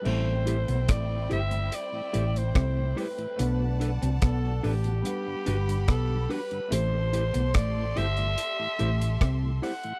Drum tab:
CC |x---------------|----------------|----------------|
HH |--xxx-xxx-xxx-ox|x-xxx-oxx-xxx-ox|x-xxx-xxx-xxx-ox|
SD |----r-------r---|----r-------r---|----r-------r---|
BD |----o-------o---|----o-------o---|----o-------o---|